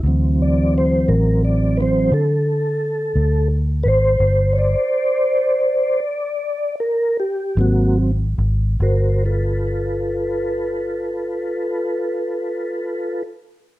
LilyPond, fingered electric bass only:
\new Staff \with { instrumentName = "Fingered electric bass" } { \clef bass \time 12/8 \key g \mixolydian \tempo 4. = 53 d,4. a,,4. d4. d,4 aes,,8 | g,,4 r2. r8 aes,,4 aes,,8 | g,,1. | }